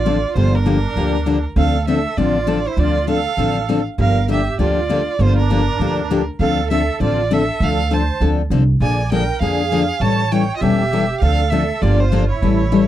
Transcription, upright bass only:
0, 0, Header, 1, 2, 480
1, 0, Start_track
1, 0, Key_signature, -1, "minor"
1, 0, Tempo, 301659
1, 570, Time_signature, 4, 2, 24, 8
1, 20487, End_track
2, 0, Start_track
2, 0, Title_t, "Upright bass"
2, 0, Program_c, 0, 32
2, 0, Note_on_c, 0, 33, 67
2, 369, Note_off_c, 0, 33, 0
2, 566, Note_on_c, 0, 31, 96
2, 1336, Note_off_c, 0, 31, 0
2, 1523, Note_on_c, 0, 38, 65
2, 2296, Note_off_c, 0, 38, 0
2, 2482, Note_on_c, 0, 38, 94
2, 3256, Note_off_c, 0, 38, 0
2, 3460, Note_on_c, 0, 33, 69
2, 4227, Note_off_c, 0, 33, 0
2, 4405, Note_on_c, 0, 38, 83
2, 5179, Note_off_c, 0, 38, 0
2, 5365, Note_on_c, 0, 33, 61
2, 6139, Note_off_c, 0, 33, 0
2, 6336, Note_on_c, 0, 31, 96
2, 7107, Note_off_c, 0, 31, 0
2, 7297, Note_on_c, 0, 38, 62
2, 8068, Note_off_c, 0, 38, 0
2, 8259, Note_on_c, 0, 31, 96
2, 9029, Note_off_c, 0, 31, 0
2, 9218, Note_on_c, 0, 38, 69
2, 9988, Note_off_c, 0, 38, 0
2, 10173, Note_on_c, 0, 38, 87
2, 10945, Note_off_c, 0, 38, 0
2, 11141, Note_on_c, 0, 33, 73
2, 11910, Note_off_c, 0, 33, 0
2, 12098, Note_on_c, 0, 38, 95
2, 12867, Note_off_c, 0, 38, 0
2, 13055, Note_on_c, 0, 38, 67
2, 13465, Note_off_c, 0, 38, 0
2, 13530, Note_on_c, 0, 36, 78
2, 13942, Note_off_c, 0, 36, 0
2, 14005, Note_on_c, 0, 34, 87
2, 14779, Note_off_c, 0, 34, 0
2, 14968, Note_on_c, 0, 41, 64
2, 15739, Note_off_c, 0, 41, 0
2, 15912, Note_on_c, 0, 33, 81
2, 16689, Note_off_c, 0, 33, 0
2, 16888, Note_on_c, 0, 28, 71
2, 17658, Note_off_c, 0, 28, 0
2, 17849, Note_on_c, 0, 38, 90
2, 18618, Note_off_c, 0, 38, 0
2, 18806, Note_on_c, 0, 31, 80
2, 19576, Note_off_c, 0, 31, 0
2, 19763, Note_on_c, 0, 33, 81
2, 20487, Note_off_c, 0, 33, 0
2, 20487, End_track
0, 0, End_of_file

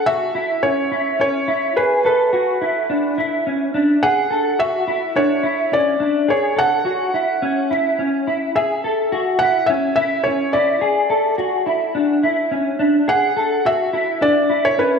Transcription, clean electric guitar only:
0, 0, Header, 1, 2, 480
1, 0, Start_track
1, 0, Tempo, 566038
1, 1498, Time_signature, 4, 2, 24, 8
1, 12712, End_track
2, 0, Start_track
2, 0, Title_t, "Clean electric guitar"
2, 0, Program_c, 0, 27
2, 53, Note_on_c, 0, 66, 73
2, 291, Note_off_c, 0, 66, 0
2, 295, Note_on_c, 0, 64, 61
2, 533, Note_on_c, 0, 61, 74
2, 536, Note_off_c, 0, 64, 0
2, 775, Note_off_c, 0, 61, 0
2, 775, Note_on_c, 0, 64, 67
2, 1012, Note_on_c, 0, 61, 63
2, 1017, Note_off_c, 0, 64, 0
2, 1253, Note_on_c, 0, 64, 73
2, 1255, Note_off_c, 0, 61, 0
2, 1491, Note_off_c, 0, 64, 0
2, 1494, Note_on_c, 0, 68, 77
2, 1733, Note_off_c, 0, 68, 0
2, 1736, Note_on_c, 0, 69, 67
2, 1971, Note_off_c, 0, 69, 0
2, 1974, Note_on_c, 0, 66, 70
2, 2213, Note_off_c, 0, 66, 0
2, 2217, Note_on_c, 0, 64, 60
2, 2456, Note_on_c, 0, 62, 75
2, 2457, Note_off_c, 0, 64, 0
2, 2695, Note_on_c, 0, 64, 73
2, 2697, Note_off_c, 0, 62, 0
2, 2936, Note_off_c, 0, 64, 0
2, 2938, Note_on_c, 0, 61, 67
2, 3170, Note_off_c, 0, 61, 0
2, 3174, Note_on_c, 0, 62, 73
2, 3416, Note_off_c, 0, 62, 0
2, 3416, Note_on_c, 0, 68, 88
2, 3647, Note_off_c, 0, 68, 0
2, 3650, Note_on_c, 0, 69, 69
2, 3889, Note_off_c, 0, 69, 0
2, 3893, Note_on_c, 0, 66, 72
2, 4130, Note_off_c, 0, 66, 0
2, 4133, Note_on_c, 0, 64, 65
2, 4372, Note_on_c, 0, 62, 76
2, 4376, Note_off_c, 0, 64, 0
2, 4607, Note_on_c, 0, 64, 76
2, 4615, Note_off_c, 0, 62, 0
2, 4849, Note_on_c, 0, 61, 67
2, 4853, Note_off_c, 0, 64, 0
2, 5084, Note_off_c, 0, 61, 0
2, 5088, Note_on_c, 0, 62, 72
2, 5329, Note_on_c, 0, 68, 82
2, 5333, Note_off_c, 0, 62, 0
2, 5561, Note_off_c, 0, 68, 0
2, 5565, Note_on_c, 0, 69, 66
2, 5805, Note_off_c, 0, 69, 0
2, 5809, Note_on_c, 0, 66, 70
2, 6050, Note_off_c, 0, 66, 0
2, 6054, Note_on_c, 0, 64, 62
2, 6294, Note_on_c, 0, 61, 80
2, 6296, Note_off_c, 0, 64, 0
2, 6535, Note_on_c, 0, 64, 71
2, 6536, Note_off_c, 0, 61, 0
2, 6772, Note_on_c, 0, 61, 68
2, 6777, Note_off_c, 0, 64, 0
2, 7015, Note_off_c, 0, 61, 0
2, 7016, Note_on_c, 0, 64, 68
2, 7250, Note_off_c, 0, 64, 0
2, 7254, Note_on_c, 0, 68, 77
2, 7495, Note_off_c, 0, 68, 0
2, 7498, Note_on_c, 0, 69, 63
2, 7732, Note_off_c, 0, 69, 0
2, 7736, Note_on_c, 0, 66, 74
2, 7976, Note_off_c, 0, 66, 0
2, 7980, Note_on_c, 0, 64, 63
2, 8219, Note_off_c, 0, 64, 0
2, 8220, Note_on_c, 0, 61, 76
2, 8456, Note_on_c, 0, 64, 70
2, 8459, Note_off_c, 0, 61, 0
2, 8697, Note_off_c, 0, 64, 0
2, 8699, Note_on_c, 0, 61, 66
2, 8938, Note_off_c, 0, 61, 0
2, 8939, Note_on_c, 0, 64, 69
2, 9167, Note_off_c, 0, 64, 0
2, 9170, Note_on_c, 0, 68, 83
2, 9407, Note_off_c, 0, 68, 0
2, 9411, Note_on_c, 0, 69, 68
2, 9648, Note_off_c, 0, 69, 0
2, 9651, Note_on_c, 0, 66, 69
2, 9887, Note_off_c, 0, 66, 0
2, 9890, Note_on_c, 0, 64, 60
2, 10131, Note_on_c, 0, 62, 75
2, 10134, Note_off_c, 0, 64, 0
2, 10374, Note_off_c, 0, 62, 0
2, 10374, Note_on_c, 0, 64, 71
2, 10610, Note_on_c, 0, 61, 67
2, 10616, Note_off_c, 0, 64, 0
2, 10845, Note_off_c, 0, 61, 0
2, 10848, Note_on_c, 0, 62, 75
2, 11090, Note_on_c, 0, 68, 85
2, 11093, Note_off_c, 0, 62, 0
2, 11330, Note_off_c, 0, 68, 0
2, 11333, Note_on_c, 0, 69, 67
2, 11573, Note_off_c, 0, 69, 0
2, 11577, Note_on_c, 0, 66, 70
2, 11811, Note_off_c, 0, 66, 0
2, 11814, Note_on_c, 0, 64, 63
2, 12052, Note_on_c, 0, 62, 83
2, 12056, Note_off_c, 0, 64, 0
2, 12292, Note_on_c, 0, 64, 70
2, 12295, Note_off_c, 0, 62, 0
2, 12534, Note_on_c, 0, 61, 69
2, 12535, Note_off_c, 0, 64, 0
2, 12712, Note_off_c, 0, 61, 0
2, 12712, End_track
0, 0, End_of_file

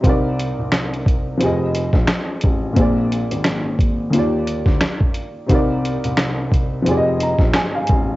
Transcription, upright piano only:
0, 0, Header, 1, 2, 480
1, 0, Start_track
1, 0, Tempo, 681818
1, 28, Time_signature, 4, 2, 24, 8
1, 5745, End_track
2, 0, Start_track
2, 0, Title_t, "Upright piano"
2, 0, Program_c, 0, 0
2, 0, Control_c, 0, 64, 127
2, 5, Note_on_c, 0, 48, 70
2, 21, Note_on_c, 0, 60, 69
2, 36, Note_on_c, 0, 63, 67
2, 39, Control_c, 0, 64, 0
2, 49, Note_on_c, 0, 70, 59
2, 64, Note_on_c, 0, 74, 78
2, 179, Control_c, 0, 64, 127
2, 957, Note_off_c, 0, 48, 0
2, 965, Note_off_c, 0, 60, 0
2, 967, Note_on_c, 0, 53, 71
2, 973, Note_off_c, 0, 63, 0
2, 980, Note_off_c, 0, 70, 0
2, 981, Note_on_c, 0, 60, 70
2, 987, Note_off_c, 0, 74, 0
2, 996, Control_c, 0, 64, 0
2, 997, Note_on_c, 0, 67, 69
2, 1011, Note_on_c, 0, 68, 60
2, 1026, Note_on_c, 0, 75, 80
2, 1133, Control_c, 0, 64, 127
2, 1918, Note_off_c, 0, 53, 0
2, 1920, Note_on_c, 0, 46, 70
2, 1925, Note_off_c, 0, 60, 0
2, 1933, Note_off_c, 0, 67, 0
2, 1936, Note_on_c, 0, 58, 64
2, 1941, Note_off_c, 0, 68, 0
2, 1948, Note_off_c, 0, 75, 0
2, 1950, Note_on_c, 0, 60, 65
2, 1959, Control_c, 0, 64, 0
2, 1964, Note_on_c, 0, 68, 61
2, 1979, Note_on_c, 0, 74, 76
2, 2059, Control_c, 0, 64, 127
2, 2875, Note_off_c, 0, 46, 0
2, 2882, Note_off_c, 0, 58, 0
2, 2889, Note_on_c, 0, 51, 65
2, 2890, Note_off_c, 0, 60, 0
2, 2897, Note_off_c, 0, 68, 0
2, 2902, Note_on_c, 0, 58, 66
2, 2905, Note_off_c, 0, 74, 0
2, 2917, Note_on_c, 0, 65, 66
2, 2918, Control_c, 0, 64, 0
2, 2933, Note_on_c, 0, 67, 72
2, 2946, Note_on_c, 0, 74, 75
2, 3057, Control_c, 0, 64, 127
2, 3839, Note_off_c, 0, 51, 0
2, 3845, Note_on_c, 0, 48, 67
2, 3846, Note_off_c, 0, 58, 0
2, 3854, Note_off_c, 0, 65, 0
2, 3859, Note_on_c, 0, 60, 68
2, 3861, Note_off_c, 0, 67, 0
2, 3868, Note_off_c, 0, 74, 0
2, 3873, Note_on_c, 0, 63, 67
2, 3876, Control_c, 0, 64, 0
2, 3888, Note_on_c, 0, 70, 62
2, 3902, Note_on_c, 0, 74, 76
2, 3991, Control_c, 0, 64, 127
2, 4797, Note_off_c, 0, 48, 0
2, 4802, Note_on_c, 0, 53, 74
2, 4804, Note_off_c, 0, 60, 0
2, 4811, Note_off_c, 0, 63, 0
2, 4816, Note_on_c, 0, 60, 65
2, 4819, Note_off_c, 0, 70, 0
2, 4826, Note_off_c, 0, 74, 0
2, 4832, Note_on_c, 0, 67, 64
2, 4837, Control_c, 0, 64, 0
2, 4845, Note_on_c, 0, 68, 68
2, 4861, Note_on_c, 0, 74, 66
2, 4897, Note_off_c, 0, 74, 0
2, 4906, Note_on_c, 0, 75, 88
2, 4943, Control_c, 0, 64, 127
2, 5088, Note_on_c, 0, 82, 69
2, 5302, Note_off_c, 0, 82, 0
2, 5319, Note_on_c, 0, 80, 70
2, 5442, Note_off_c, 0, 80, 0
2, 5456, Note_on_c, 0, 77, 72
2, 5745, Note_off_c, 0, 53, 0
2, 5745, Note_off_c, 0, 60, 0
2, 5745, Note_off_c, 0, 67, 0
2, 5745, Note_off_c, 0, 68, 0
2, 5745, Note_off_c, 0, 75, 0
2, 5745, Note_off_c, 0, 77, 0
2, 5745, End_track
0, 0, End_of_file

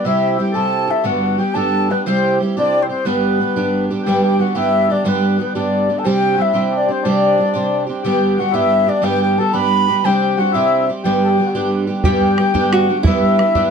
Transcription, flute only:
0, 0, Header, 1, 2, 480
1, 0, Start_track
1, 0, Key_signature, 1, "major"
1, 0, Tempo, 333333
1, 73, Time_signature, 6, 3, 24, 8
1, 19734, End_track
2, 0, Start_track
2, 0, Title_t, "Flute"
2, 0, Program_c, 0, 73
2, 76, Note_on_c, 0, 76, 104
2, 568, Note_off_c, 0, 76, 0
2, 580, Note_on_c, 0, 79, 88
2, 782, Note_on_c, 0, 81, 108
2, 804, Note_off_c, 0, 79, 0
2, 1298, Note_on_c, 0, 76, 97
2, 1319, Note_off_c, 0, 81, 0
2, 1507, Note_on_c, 0, 78, 89
2, 1529, Note_off_c, 0, 76, 0
2, 1990, Note_on_c, 0, 79, 92
2, 2012, Note_off_c, 0, 78, 0
2, 2212, Note_on_c, 0, 81, 119
2, 2234, Note_off_c, 0, 79, 0
2, 2746, Note_on_c, 0, 71, 96
2, 2768, Note_off_c, 0, 81, 0
2, 2937, Note_off_c, 0, 71, 0
2, 2946, Note_on_c, 0, 72, 102
2, 3412, Note_off_c, 0, 72, 0
2, 3702, Note_on_c, 0, 74, 109
2, 4061, Note_on_c, 0, 72, 73
2, 4082, Note_off_c, 0, 74, 0
2, 4153, Note_off_c, 0, 72, 0
2, 4162, Note_on_c, 0, 72, 74
2, 4397, Note_on_c, 0, 71, 86
2, 4418, Note_off_c, 0, 72, 0
2, 5611, Note_off_c, 0, 71, 0
2, 5846, Note_on_c, 0, 79, 89
2, 6088, Note_off_c, 0, 79, 0
2, 6112, Note_on_c, 0, 79, 70
2, 6337, Note_on_c, 0, 78, 76
2, 6359, Note_off_c, 0, 79, 0
2, 6540, Note_on_c, 0, 76, 101
2, 6562, Note_off_c, 0, 78, 0
2, 7072, Note_on_c, 0, 74, 85
2, 7094, Note_off_c, 0, 76, 0
2, 7310, Note_on_c, 0, 71, 74
2, 7331, Note_off_c, 0, 74, 0
2, 7784, Note_off_c, 0, 71, 0
2, 7792, Note_on_c, 0, 71, 67
2, 7994, Note_off_c, 0, 71, 0
2, 8019, Note_on_c, 0, 74, 89
2, 8614, Note_on_c, 0, 81, 62
2, 8636, Note_off_c, 0, 74, 0
2, 8732, Note_on_c, 0, 79, 104
2, 8754, Note_off_c, 0, 81, 0
2, 9232, Note_on_c, 0, 76, 91
2, 9254, Note_off_c, 0, 79, 0
2, 9736, Note_on_c, 0, 74, 82
2, 9757, Note_off_c, 0, 76, 0
2, 9957, Note_on_c, 0, 72, 85
2, 9978, Note_off_c, 0, 74, 0
2, 10191, Note_on_c, 0, 74, 102
2, 10213, Note_off_c, 0, 72, 0
2, 11193, Note_off_c, 0, 74, 0
2, 11584, Note_on_c, 0, 79, 103
2, 12068, Note_on_c, 0, 78, 94
2, 12089, Note_off_c, 0, 79, 0
2, 12302, Note_on_c, 0, 76, 107
2, 12323, Note_off_c, 0, 78, 0
2, 12796, Note_on_c, 0, 74, 91
2, 12817, Note_off_c, 0, 76, 0
2, 13017, Note_on_c, 0, 79, 107
2, 13038, Note_off_c, 0, 74, 0
2, 13272, Note_off_c, 0, 79, 0
2, 13281, Note_on_c, 0, 79, 88
2, 13504, Note_on_c, 0, 81, 98
2, 13526, Note_off_c, 0, 79, 0
2, 13720, Note_on_c, 0, 83, 127
2, 13742, Note_off_c, 0, 81, 0
2, 14464, Note_on_c, 0, 79, 104
2, 14486, Note_off_c, 0, 83, 0
2, 14956, Note_on_c, 0, 78, 91
2, 14977, Note_off_c, 0, 79, 0
2, 15187, Note_on_c, 0, 76, 108
2, 15208, Note_off_c, 0, 78, 0
2, 15674, Note_off_c, 0, 76, 0
2, 15903, Note_on_c, 0, 79, 89
2, 16827, Note_off_c, 0, 79, 0
2, 17336, Note_on_c, 0, 79, 85
2, 18320, Note_on_c, 0, 78, 92
2, 18341, Note_off_c, 0, 79, 0
2, 18672, Note_off_c, 0, 78, 0
2, 18672, Note_on_c, 0, 78, 65
2, 18771, Note_on_c, 0, 76, 99
2, 18792, Note_off_c, 0, 78, 0
2, 19734, Note_off_c, 0, 76, 0
2, 19734, End_track
0, 0, End_of_file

